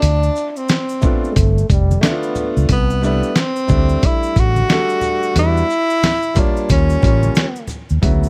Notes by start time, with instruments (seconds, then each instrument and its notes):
Already playing: tenor saxophone D4
0.02 fretless electric bass D2, closed hi-hat, maracas
0.23 maracas
0.36 maracas, shaker
0.50 tenor saxophone D4
0.56 tenor saxophone C4, maracas
0.69 snare, closed hi-hat, maracas
0.89 maracas
1.01 upright piano A3 B3 D4 F4, kick, low conga, shaker, maracas
1.24 maracas
1.31 trombone G#3
1.36 fretless electric bass G1, trombone A3, kick, closed hi-hat, maracas
1.58 maracas
1.70 fretless electric bass F1, trombone G3, kick, closed hi-hat, shaker, maracas
1.91 high conga, maracas
2.01 upright piano A3 B3 D4 E4, trombone B3, snare, closed hi-hat, high conga, maracas
2.10 upright piano F4
2.23 maracas
2.35 low conga, shaker, maracas
2.57 fretless electric bass C#2, maracas
2.69 fretless electric bass C2, tenor saxophone B3, kick, closed hi-hat, maracas
2.90 maracas
3.01 upright piano G3 A3 D4 E4, maracas, shaker
3.06 tenor saxophone B3
3.23 maracas
3.35 tenor saxophone C4, snare, closed hi-hat, maracas
3.56 maracas
3.67 fretless electric bass D2, upright piano G3 A3 D4 E4, kick, low conga, maracas, shaker
3.89 maracas
4.03 tenor saxophone E4, kick, closed hi-hat, maracas
4.23 maracas
4.36 fretless electric bass A1, tenor saxophone F#4, kick, closed hi-hat, maracas, shaker
4.56 high conga, maracas
4.68 upright piano G3 A3 D4 A4, snare, closed hi-hat, high conga, maracas
4.89 maracas
5.01 low conga, maracas, shaker
5.23 maracas
5.34 fretless electric bass E2, upright piano G3 B3 D4 F#4, closed hi-hat, maracas
5.39 tenor saxophone E4
5.57 maracas
5.70 maracas, shaker
5.90 maracas
6.03 snare, closed hi-hat, low conga, maracas
6.23 maracas
6.34 upright piano G3 A#3 F4 C#5, kick, closed hi-hat, low conga, maracas, shaker
6.40 tenor saxophone D4
6.57 maracas
6.69 fretless electric bass D#2, tenor saxophone C#4, kick, closed hi-hat, maracas
6.90 maracas
7.01 fretless electric bass A1, upright piano G3 A#3 C#4 F4, kick, closed hi-hat, maracas, shaker
7.23 high conga, maracas
7.35 snare, closed hi-hat, high conga, maracas
7.56 maracas
7.68 low conga, maracas, shaker
7.89 fretless electric bass D#2, maracas
8.02 fretless electric bass D2, upright piano C#3 F#3 B3 E4, kick, closed hi-hat, maracas
8.23 maracas